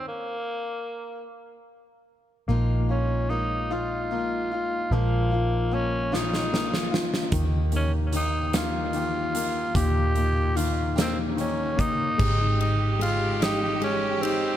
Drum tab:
CC |------------|------------|------------|------------|
RD |------------|------------|------------|------------|
HH |------------|------------|------------|x-x-x-x-x-x-|
SD |------------|------------|------oooooo|------o-----|
BD |------------|------------|------------|o-----------|

CC |------------|x-----------|
RD |------------|--x-x-x-x-x-|
HH |x-x-x-x-x-x-|------------|
SD |------o-----|------o-----|
BD |o---------o-|o-----------|